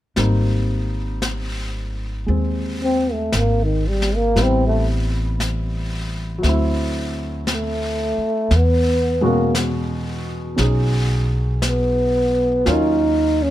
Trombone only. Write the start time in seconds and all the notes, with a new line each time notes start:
2.83 C4
3.12 A3
3.37 A#3
3.64 D#3
3.87 G3
4.16 A#3
4.42 C4
4.67 A3
7.53 A3
8.57 B3
9.25 A#3
11.67 B3
12.72 D#4
13.42 C#4